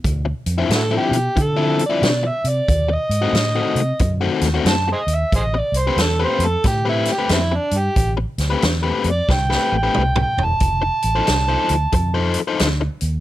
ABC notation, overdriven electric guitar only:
X:1
M:4/4
L:1/16
Q:"Swing" 1/4=91
K:Am
V:1 name="Overdriven electric guitar"
z3 [D,F,CE] z [D,F,CE] z3 [D,F,CE] z [D,F,CE] z4 | z3 [^D,A,^B,^F] z [D,A,B,F] z3 [D,A,B,F] z [D,A,B,F] z4 | z3 [A,CGB] z [A,CGB] z3 [A,CGB] z [A,CGB] z4 | z3 [A,CGB] z [A,CGB] z3 [A,CGB] z [A,CGB] z4 |
z3 [F,_EAc] z [F,EAc] z3 [F,EAc] z [F,EAc] z4 |]